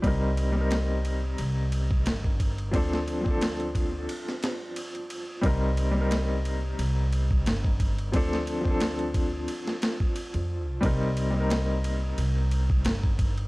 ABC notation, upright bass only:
X:1
M:4/4
L:1/16
Q:"Swing 16ths" 1/4=89
K:Cdor
V:1 name="Upright bass" clef=bass
C,,8 C,,4 G,,,4 | D,,8 z8 | C,,8 C,,4 G,,,4 | D,,8 z4 z F,,2 C,, |
C,,8 C,,4 G,,,4 |]